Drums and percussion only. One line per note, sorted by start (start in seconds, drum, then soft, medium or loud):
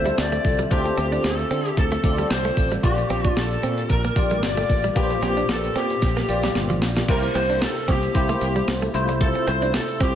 0.06 closed hi-hat soft
0.18 snare loud
0.18 closed hi-hat medium
0.33 closed hi-hat soft
0.44 kick medium
0.44 open hi-hat medium
0.59 closed hi-hat medium
0.71 kick loud
0.71 closed hi-hat medium
0.86 closed hi-hat soft
0.98 closed hi-hat medium
1.12 closed hi-hat medium
1.24 snare loud
1.24 closed hi-hat medium
1.39 closed hi-hat soft
1.51 closed hi-hat medium
1.65 closed hi-hat medium
1.77 kick medium
1.77 closed hi-hat medium
1.92 closed hi-hat soft
2.04 kick medium
2.04 closed hi-hat medium
2.18 closed hi-hat soft
2.30 snare loud
2.30 closed hi-hat medium
2.45 closed hi-hat soft
2.57 kick medium
2.57 open hi-hat medium
2.71 closed hi-hat medium
2.83 kick loud
2.83 closed hi-hat medium
2.98 closed hi-hat soft
3.10 closed hi-hat medium
3.25 kick medium
3.25 closed hi-hat medium
3.37 snare loud
3.37 closed hi-hat medium
3.51 closed hi-hat soft
3.63 closed hi-hat medium
3.78 closed hi-hat medium
3.90 kick medium
3.90 closed hi-hat medium
4.04 closed hi-hat soft
4.16 kick medium
4.16 closed hi-hat medium
4.31 closed hi-hat soft
4.43 snare loud
4.43 closed hi-hat medium
4.57 closed hi-hat soft
4.69 kick medium
4.69 open hi-hat medium
4.84 closed hi-hat medium
4.96 kick medium
4.96 closed hi-hat medium
5.10 closed hi-hat soft
5.22 closed hi-hat medium
5.37 closed hi-hat medium
5.49 snare loud
5.49 closed hi-hat medium
5.64 closed hi-hat soft
5.76 closed hi-hat medium
5.90 closed hi-hat medium
6.02 kick medium
6.02 snare medium
6.02 closed hi-hat medium
6.17 snare medium
6.17 closed hi-hat soft
6.29 closed hi-hat medium
6.43 snare medium
6.43 closed hi-hat soft
6.55 snare medium
6.55 closed hi-hat medium
6.70 closed hi-hat soft
6.82 snare loud
6.82 open hi-hat medium
6.96 snare medium
6.96 closed hi-hat medium
7.08 kick medium
7.08 closed hi-hat medium
7.08 crash medium
7.23 closed hi-hat soft
7.35 closed hi-hat medium
7.50 closed hi-hat medium
7.62 snare loud
7.62 closed hi-hat medium
7.77 closed hi-hat soft
7.88 kick medium
7.88 closed hi-hat medium
8.03 closed hi-hat medium
8.15 kick medium
8.15 closed hi-hat medium
8.29 closed hi-hat soft
8.41 closed hi-hat medium
8.56 closed hi-hat medium
8.68 snare loud
8.68 closed hi-hat medium
8.82 closed hi-hat soft
8.94 closed hi-hat medium
9.09 closed hi-hat medium
9.21 kick loud
9.21 closed hi-hat medium
9.35 closed hi-hat soft
9.47 closed hi-hat medium
9.62 closed hi-hat medium
9.74 snare loud
9.74 closed hi-hat medium
9.89 closed hi-hat soft
10.01 kick loud
10.01 closed hi-hat medium